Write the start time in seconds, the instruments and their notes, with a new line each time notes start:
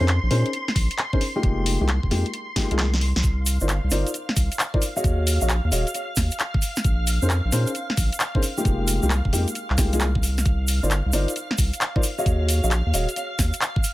Already playing: string machine C6
0.00 sub bass F2, grand piano C#4 D#4 G#4 A#4 C5
0.08 clap, closed hi-hat
0.23 sub bass A#1
0.31 sub bass A#2, grand piano C#4 D#4 G#4 A#4 C5, open hi-hat
0.46 closed hi-hat
0.53 closed hi-hat
0.68 snare
0.76 sub bass A#1, kick, open hi-hat
0.91 closed hi-hat
0.98 clap, closed hi-hat
1.13 grand piano C#4 D#4 G#4 A#4 C5, kick
1.21 open hi-hat
1.36 grand piano G#3 A#3 D#4 F4 G4
1.43 sub bass F1, kick, closed hi-hat
1.66 open hi-hat
1.81 sub bass C2, grand piano G#3 A#3 D#4 F4 G4
1.89 clap, closed hi-hat
2.03 sub bass F1, kick
2.11 sub bass F2, grand piano G#3 A#3 D#4 F4 G4, snare, open hi-hat
2.26 closed hi-hat
2.34 closed hi-hat
2.56 grand piano G#3 A#3 D#4 F4 G4, kick, snare, open hi-hat
2.71 sub bass C2, grand piano G#3 A#3 D#4 F4 G#4, closed hi-hat
2.79 snare, clap, closed hi-hat
2.94 snare
3.01 open hi-hat
3.16 sub bass C2, snare, closed hi-hat
3.23 sub bass C2, string machine F5, kick, closed hi-hat, shaker
3.46 open hi-hat, shaker
3.60 sub bass G1, grand piano D#4 F4 A#4 C5 D5, shaker
3.69 clap, closed hi-hat, shaker
3.84 sub bass C2
3.91 sub bass G1, grand piano D#4 F4 A#4 C5 D5, snare, open hi-hat, shaker
4.07 closed hi-hat, shaker
4.14 closed hi-hat, shaker
4.29 snare
4.36 sub bass C2, kick, open hi-hat, shaker
4.52 closed hi-hat, shaker
4.59 clap, closed hi-hat, shaker
4.74 grand piano D#4 F4 A#4 C5 D5, kick
4.82 open hi-hat, shaker
4.96 grand piano F#4 G#4 C#5 D#5 F5, shaker
5.04 sub bass D#2, kick, closed hi-hat, shaker
5.27 open hi-hat, shaker
5.41 sub bass A#1, grand piano F#4 G#4 C#5 D#5 F5, shaker
5.49 clap, closed hi-hat, shaker
5.64 sub bass D#2
5.72 sub bass D#1, grand piano F#4 G#4 C#5 D#5 F5, open hi-hat, shaker
5.87 closed hi-hat, shaker
5.94 closed hi-hat, shaker
6.16 sub bass D#2, kick, snare, open hi-hat, shaker
6.31 closed hi-hat, shaker
6.40 clap, closed hi-hat, shaker
6.54 kick
6.62 open hi-hat, shaker
6.76 snare, shaker
6.84 sub bass A#1, kick, closed hi-hat, shaker
7.07 open hi-hat, shaker
7.22 sub bass F2, grand piano C#4 D#4 G#4 A#4 C5, shaker
7.30 clap, closed hi-hat, shaker
7.45 sub bass A#1
7.52 sub bass A#2, grand piano C#4 D#4 G#4 A#4 C5, snare, open hi-hat, shaker
7.67 closed hi-hat, shaker
7.75 closed hi-hat, shaker
7.90 snare
7.97 sub bass A#1, kick, open hi-hat, shaker
8.12 closed hi-hat, shaker
8.20 clap, closed hi-hat, shaker
8.35 grand piano C#4 D#4 G#4 A#4 C5, kick
8.43 open hi-hat, shaker
8.57 grand piano G#3 A#3 D#4 F4 G4, shaker
8.65 sub bass F1, kick, closed hi-hat, shaker
8.88 open hi-hat, shaker
9.03 sub bass C2, grand piano G#3 A#3 D#4 F4 G4, shaker
9.10 clap, closed hi-hat, shaker
9.25 sub bass F1, kick
9.33 sub bass F2, grand piano G#3 A#3 D#4 F4 G4, open hi-hat, shaker
9.48 closed hi-hat, shaker
9.55 closed hi-hat, shaker
9.70 sub bass C2, clap
9.78 sub bass C2, grand piano G#3 A#3 D#4 F4 G4, kick, snare, open hi-hat, shaker
9.93 grand piano G#3 A#3 D#4 F4 G#4, closed hi-hat, shaker
10.00 clap, closed hi-hat, shaker
10.15 kick
10.23 open hi-hat, shaker
10.38 snare, shaker
10.45 sub bass C2, string machine F5, kick, closed hi-hat, shaker
10.67 open hi-hat, shaker
10.83 sub bass G1, grand piano D#4 F4 A#4 C5 D5, shaker
10.91 clap, closed hi-hat, shaker
11.06 sub bass C2
11.13 sub bass G1, grand piano D#4 F4 A#4 C5 D5, snare, open hi-hat, shaker
11.28 closed hi-hat, shaker
11.36 closed hi-hat, shaker
11.51 snare
11.58 sub bass C2, kick, open hi-hat, shaker
11.73 closed hi-hat, shaker
11.81 clap, closed hi-hat, shaker
11.96 grand piano D#4 F4 A#4 C5 D5, kick
12.03 open hi-hat, shaker
12.18 grand piano F#4 G#4 C#5 D#5 F5, shaker
12.26 sub bass D#2, kick, closed hi-hat, shaker
12.49 open hi-hat, shaker
12.63 sub bass A#1, grand piano F#4 G#4 C#5 D#5 F5, shaker
12.71 clap, closed hi-hat, shaker
12.86 sub bass D#2
12.94 sub bass D#1, grand piano F#4 G#4 C#5 D#5 F5, open hi-hat, shaker
13.09 closed hi-hat, shaker
13.16 closed hi-hat, shaker
13.39 sub bass D#2, kick, snare, open hi-hat, shaker
13.53 closed hi-hat, shaker
13.61 clap, closed hi-hat, shaker
13.76 kick
13.84 open hi-hat, shaker